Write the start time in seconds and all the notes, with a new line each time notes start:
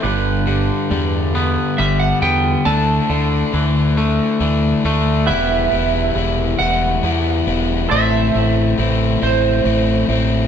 0.03 G1 G2 D3 G3 D4 G4 B4
0.46 G2 D3 G3
0.91 E2 G2 D3 G3
1.34 G2 D3 G3 B3
1.78 G1 G2 D3 G3 E5
1.99 F#5
2.21 E2 G2 D3 G3 B3 G5
2.65 D2 D3 A3 D4 E4 A4 A5
3.09 D2 D3 A3 D4
3.53 D2 D3 E3 A3 D4
3.97 D3 A3 D4
4.40 D2 D3 E3 A3 D4
4.84 D2 D3 A3 D4
5.26 E1 E3 G3 B3 E4 G4 B4 E5 F#5
5.71 E1 G3 B3 E4
6.15 E1 E3 G3 B3 E4
6.59 E1 G3 B3 E4 F#5
7.03 E2 E3 G3 B3 E4
7.47 E1 G3 B3 E4
7.89 A1 A2 E3 A3 C4 A4 C5 E5 A5
7.93 E4
8.34 A1 A3 C4 E4
8.78 A1 E3 A3 C4 E4
9.21 A1 A3 C4 E4 C5
9.65 A1 E3 A3 C4 E4
10.09 A1 A3 C4 E4